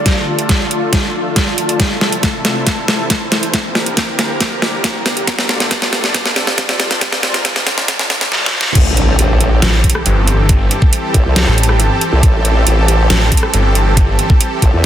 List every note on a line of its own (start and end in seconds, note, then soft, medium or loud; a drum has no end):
0.00 1.76 D3 medium
0.00 3.50 A3 medium
0.00 1.76 F4 medium
0.00 1.80 F4 medium
0.00 1.76 A4 medium
0.00 2.49 D5 medium
0.00 3.54 A5 medium
0.00 riser medium
0.06 kick loud
0.06 snare medium
0.06 closed hi-hat medium
0.39 closed hi-hat medium
0.49 kick medium
0.49 snare medium
0.49 closed hi-hat medium
0.71 closed hi-hat soft
0.93 kick medium
0.93 snare medium
0.93 closed hi-hat medium
1.36 kick medium
1.36 snare medium
1.36 closed hi-hat medium
1.58 closed hi-hat medium
1.69 closed hi-hat soft
1.80 3.52 C3 medium
1.80 4.23 E4 medium
1.80 3.52 E4 medium
1.80 3.52 A4 medium
1.80 kick loud
1.80 snare medium
1.80 closed hi-hat medium
1.93 4.21 C5 medium
2.01 snare medium
2.12 closed hi-hat soft
2.23 kick medium
2.23 snare medium
2.23 closed hi-hat medium
2.45 snare medium
2.45 closed hi-hat medium
2.67 kick medium
2.67 snare medium
2.67 closed hi-hat medium
2.88 snare medium
3.10 kick medium
3.10 snare medium
3.10 closed hi-hat medium
3.32 snare medium
3.32 closed hi-hat medium
3.43 closed hi-hat soft
3.54 8.28 D3 medium
3.54 5.26 A#3 medium
3.54 5.97 G4 medium
3.54 5.26 G4 medium
3.54 5.26 A#4 medium
3.54 kick loud
3.54 snare medium
3.54 closed hi-hat medium
3.75 5.27 A#5 medium
3.75 snare medium
3.86 closed hi-hat soft
3.97 kick loud
3.97 snare medium
3.97 closed hi-hat medium
4.02 7.71 D5 medium
4.19 snare medium
4.19 closed hi-hat medium
4.41 kick loud
4.41 snare medium
4.41 closed hi-hat medium
4.62 snare medium
4.84 kick medium
4.84 snare medium
4.84 closed hi-hat medium
5.06 snare medium
5.06 closed hi-hat medium
5.17 closed hi-hat soft
5.27 7.00 A3 medium
5.27 7.71 F4 medium
5.27 7.00 F4 medium
5.27 7.00 A4 medium
5.27 kick loud
5.27 snare medium
5.27 closed hi-hat medium
5.39 snare medium
5.49 snare medium
5.60 snare medium
5.60 closed hi-hat soft
5.71 7.01 A5 medium
5.71 kick medium
5.71 snare medium
5.71 closed hi-hat medium
5.82 snare medium
5.93 snare loud
5.93 closed hi-hat medium
6.04 snare medium
6.14 kick loud
6.14 snare medium
6.14 closed hi-hat medium
6.26 snare medium
6.36 snare loud
6.47 snare medium
6.58 kick medium
6.58 snare loud
6.58 closed hi-hat medium
6.69 snare medium
6.80 snare loud
6.80 closed hi-hat medium
6.91 snare medium
6.91 closed hi-hat soft
7.01 8.30 C4 medium
7.01 8.32 D4 medium
7.01 8.31 F4 medium
7.01 8.30 A#4 medium
7.01 kick loud
7.01 snare loud
7.01 closed hi-hat medium
7.12 snare medium
7.23 snare loud
7.34 snare medium
7.34 closed hi-hat medium
7.45 kick medium
7.45 snare loud
7.45 closed hi-hat medium
7.56 snare medium
7.67 snare loud
7.67 closed hi-hat medium
7.78 snare medium
7.88 kick loud
7.88 snare loud
7.88 closed hi-hat medium
7.88 swell medium
7.99 snare medium
8.10 snare loud
8.21 snare loud
8.32 snare medium
8.46 snare medium
8.61 snare loud
8.75 9.17 A1 medium
8.75 14.86 E3 medium
8.75 14.86 C4 medium
8.75 14.86 G4 medium
8.75 14.86 A4 medium
8.75 kick loud
8.75 closed hi-hat medium
8.75 crash loud
8.75 impact medium
8.97 closed hi-hat medium
9.19 9.61 A1 medium
9.19 closed hi-hat medium
9.27 14.86 A5 medium
9.41 closed hi-hat medium
9.62 9.82 A1 loud
9.62 snare loud
9.62 closed hi-hat medium
9.84 kick medium
9.84 closed hi-hat medium
9.90 closed hi-hat medium
9.95 cross-stick medium
10.06 10.69 G1 loud
10.06 closed hi-hat medium
10.27 closed hi-hat medium
10.49 kick loud
10.49 closed hi-hat medium
10.71 closed hi-hat medium
10.82 kick loud
10.93 closed hi-hat medium
11.14 11.24 A1 medium
11.14 kick medium
11.14 closed hi-hat medium
11.26 11.46 C2 loud
11.36 snare loud
11.36 closed hi-hat medium
11.47 11.89 A1 medium
11.47 cross-stick medium
11.58 closed hi-hat soft
11.63 closed hi-hat medium
11.69 cross-stick medium
11.80 closed hi-hat medium
12.01 closed hi-hat medium
12.12 12.21 C2 loud
12.23 12.65 A1 medium
12.23 kick loud
12.23 closed hi-hat medium
12.45 closed hi-hat medium
12.67 13.08 A1 loud
12.67 closed hi-hat medium
12.88 closed hi-hat medium
13.10 13.30 A1 loud
13.10 snare loud
13.10 closed hi-hat medium
13.32 kick medium
13.32 closed hi-hat medium
13.37 closed hi-hat medium
13.43 cross-stick medium
13.54 14.17 G1 loud
13.54 closed hi-hat medium
13.75 closed hi-hat medium
13.97 kick loud
13.97 closed hi-hat medium
14.19 closed hi-hat medium
14.30 kick loud
14.41 closed hi-hat medium
14.62 14.72 A1 medium
14.62 kick medium
14.62 closed hi-hat medium
14.73 14.86 E2 loud